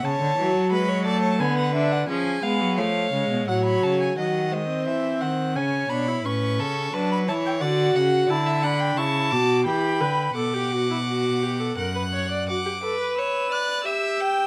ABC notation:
X:1
M:3/4
L:1/16
Q:1/4=87
K:Bm
V:1 name="Violin"
a4 b2 a2 ^g f e f | ^g2 ^e2 e4 f b a g | f2 ^d2 e2 f2 ^g2 b2 | c'4 a b a g f4 |
a2 b2 c'2 d'2 b4 | d'8 f'4 | d'4 e'2 f'2 e'4 |]
V:2 name="Violin"
c4 B c d c B4 | ^G4 c4 c4 | ^d2 ^B6 c4 | B2 A2 B2 c2 d2 f2 |
d e f g a4 g4 | f8 f4 | f2 B2 c2 d2 e2 g2 |]
V:3 name="Viola"
z2 F,2 ^G,2 A,2 B,2 D2 | C2 B,2 A,2 ^G,2 F,4 | F,2 ^G, ^B,4- B, C2 D E | C4 D2 E2 F4 |
E2 D2 E2 F2 G2 B2 | A G F E F2 G A ^A B c d | F G A B4- B G4 |]
V:4 name="Cello" clef=bass
C, D, E, F,4- F, D,4 | ^E,2 ^G, F, E,2 C, B,, A,,2 C,2 | ^D,4 E,2 D,2 C,2 B,,2 | A,,2 C,2 F,2 E,2 D,2 C,2 |
D,4 C,2 B,,2 E,2 D,2 | B,,8 F,,4 | z12 |]